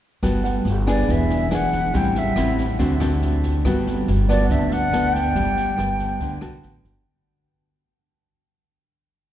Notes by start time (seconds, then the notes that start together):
0.23 G1 G3 B3 F#4 A4, kick, cross-stick, snare
0.44 F#5, snare
0.65 G1, snare
0.87 B3 D4 G#4 D5, kick, cross-stick, snare
1.09 E1 E3 E5, kick, snare
1.30 snare
1.51 B3 D4 G#4 F#5, cross-stick, snare
1.72 kick, snare
1.94 A1 A2 G3 C4 E4 G5, kick, snare
2.15 E5, snare
2.36 A1 G3 C4 E4, cross-stick, snare
2.58 kick, snare
2.79 D2 D3 C4 F#4 A4, kick, snare
3.00 C4 F#4 A4, cross-stick, snare
3.22 snare
3.43 kick, snare
3.65 G1 G3 B3 F#4 A4, kick, cross-stick, snare
3.86 snare
4.08 G1, snare
4.29 B3 F#4 A4 D5, kick, cross-stick, snare
4.44 F#5
4.50 D2 D3 E5, kick, snare
4.59 A5
4.71 F#5, snare
4.93 B3 A4, cross-stick, snare
5.13 G5, kick, snare
5.35 G1 G3, kick, snare
5.57 snare
5.78 G1 B3 A4, cross-stick, snare
5.99 kick, snare
6.20 D2 D3, kick, snare
6.41 B1 B3 F#4 A4, cross-stick, snare
6.63 A1, snare
6.84 G1, kick, snare